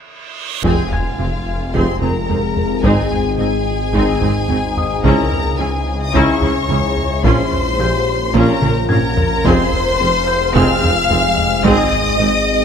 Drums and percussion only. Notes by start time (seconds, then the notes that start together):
0.64 taiko
0.92 taiko low
1.74 taiko
2.02 taiko low
2.29 taiko low
2.57 taiko low
2.84 taiko
3.12 taiko low
3.94 taiko
4.22 taiko low
4.49 taiko low
4.77 taiko low
5.04 taiko
5.32 taiko low
6.14 taiko
6.42 taiko low
6.69 taiko low
6.97 taiko low
7.24 taiko
7.51 taiko low
8.35 taiko
8.62 taiko mid
8.90 taiko low-mid
9.17 taiko low
9.45 taiko
9.72 taiko low
10.55 taiko
10.83 taiko low
11.10 taiko low
11.38 taiko low
11.65 taiko
11.92 taiko low